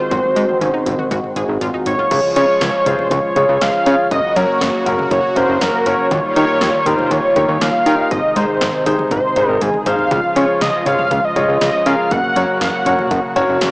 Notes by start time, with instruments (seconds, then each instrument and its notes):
Already playing: analog synth pad D#3 G#3 C4 F#4, analog synth lead C5
0.11 analog synth bass G#1, synth pluck F#4, kick, closed hi-hat, high tom
0.24 high tom
0.36 analog synth bass G#2, synth pluck D#4, closed hi-hat
0.49 high tom
0.61 analog synth bass G#1, synth pluck C#4, closed hi-hat, mid tom
0.74 synth pluck D#4
0.86 analog synth bass G#1, closed hi-hat, mid tom
0.99 synth pluck F#4, mid tom
1.11 analog synth bass G#1, synth pluck F#4, kick, closed hi-hat
1.24 mid tom
1.36 analog synth bass G#1, synth pluck G#4, closed hi-hat, mid tom
1.49 analog synth bass G#1
1.61 analog synth bass G#1, synth pluck F4, closed hi-hat, floor tom
1.74 synth pluck D#4, floor tom
1.86 analog synth bass G#1, analog synth lead C#5, closed hi-hat, floor tom
1.99 synth pluck F4, floor tom
2.11 analog synth bass C#2, analog synth pad C#3 F3 G#3 F4, analog synth lead C#5, kick, closed hi-hat, crash
2.36 analog synth bass C#3, grand piano F4 G#4 C#5, analog synth lead C#5, closed hi-hat
2.61 analog synth bass C#2, snare, closed hi-hat
2.86 analog synth bass C#2, grand piano F4 G#4 C#5, analog synth lead C5, closed hi-hat, mid tom
2.99 mid tom
3.11 analog synth bass C#2, analog synth lead C#5, kick, closed hi-hat
3.36 analog synth bass C#2, grand piano F4 G#4 C#5, kick, closed hi-hat, mid tom
3.49 analog synth bass C#2
3.61 analog synth bass C#2, analog synth lead F5, snare, closed hi-hat
3.86 analog synth bass C#3, grand piano F4 G#4 C#5, closed hi-hat
4.11 analog synth bass F#1, analog synth pad F#3 A#3 F#4, analog synth lead D#5, kick, closed hi-hat
4.36 analog synth bass F#2, grand piano C#4 F#4 A#4, analog synth lead C#5, closed hi-hat
4.61 analog synth bass F#1, snare, closed hi-hat
4.86 analog synth bass F#1, grand piano C#4 F#4 A#4, closed hi-hat, mid tom
4.99 mid tom
5.11 analog synth bass F#1, analog synth lead C#5, kick, closed hi-hat
5.36 analog synth bass F#1, grand piano C#4 F#4 A#4, analog synth lead C5, closed hi-hat, mid tom
5.49 analog synth bass F#1
5.61 analog synth bass F#1, analog synth lead A#4, snare, closed hi-hat
5.86 analog synth bass F#1, grand piano C#4 F#4 A#4, analog synth lead C#5, closed hi-hat
6.11 analog synth bass D#2, analog synth pad D#3 G3 A#3 F4, kick, closed hi-hat
6.36 analog synth bass D#3, grand piano D#4 G4 A#4, analog synth lead C#5, closed hi-hat
6.61 analog synth bass D#2, snare, closed hi-hat
6.86 analog synth bass D#2, grand piano D#4 G4 A#4, analog synth lead C5, closed hi-hat, mid tom
6.99 mid tom
7.11 analog synth bass D#2, analog synth lead C#5, kick, closed hi-hat
7.36 analog synth bass D#2, grand piano D#4 G4 C#5, kick, closed hi-hat, mid tom
7.49 analog synth bass D#2
7.61 analog synth bass D#2, analog synth lead F5, snare, closed hi-hat
7.86 analog synth bass D#3, grand piano D#4 G4 A#4, closed hi-hat
8.11 analog synth bass G#1, analog synth pad C3 G#3 D#4, analog synth lead D#5, kick, closed hi-hat
8.36 analog synth bass G#2, grand piano D#4 G#4 C5, analog synth lead C5, closed hi-hat
8.61 analog synth bass G#1, snare, closed hi-hat
8.86 analog synth bass G#1, grand piano D#4 G#4 C5, closed hi-hat
8.99 mid tom
9.11 analog synth bass G#1, analog synth lead C5, kick, closed hi-hat
9.36 analog synth bass G#1, grand piano D#4 G#4 C5, closed hi-hat, mid tom
9.49 analog synth bass G#1, analog synth lead A#4
9.61 analog synth bass G#1, analog synth lead G#4, closed hi-hat, high tom
9.74 mid tom
9.86 analog synth bass G#1, grand piano D#4 G#4 C5, analog synth lead F5, closed hi-hat, mid tom
9.99 floor tom
10.11 analog synth bass C#2, analog synth pad C#3 F3 F4, kick, closed hi-hat
10.36 analog synth bass C#3, grand piano F4 G#4 C#5, analog synth lead C#5, closed hi-hat
10.61 analog synth bass C#2, analog synth lead D#5, snare, closed hi-hat
10.86 analog synth bass C#2, grand piano F4 G#4 C#5, analog synth lead F5, closed hi-hat, mid tom
10.99 mid tom
11.11 analog synth bass C#2, kick, closed hi-hat
11.25 analog synth lead D#5
11.36 analog synth bass C#2, grand piano F4 G#4 C#5, kick, closed hi-hat, mid tom
11.49 analog synth bass C#2
11.61 analog synth bass C#2, analog synth lead D#5, snare, closed hi-hat
11.86 analog synth bass C#3, grand piano F4 G#4 A#4, analog synth lead F5, closed hi-hat
12.11 analog synth bass F#1, analog synth pad F#3 A#3 F#4, analog synth lead F#5, kick, closed hi-hat
12.36 analog synth bass F#2, grand piano F#4 A#4 C#5, closed hi-hat
12.61 analog synth bass F#1, analog synth lead F#5, snare, closed hi-hat
12.86 analog synth bass F#1, grand piano F#4 A#4 C#5, closed hi-hat, mid tom
12.99 mid tom
13.11 analog synth bass F#1, kick, closed hi-hat
13.36 analog synth bass F#1, grand piano F#4 A#4 C#5, closed hi-hat, mid tom
13.49 analog synth bass F#1
13.61 analog synth bass F#1, snare, closed hi-hat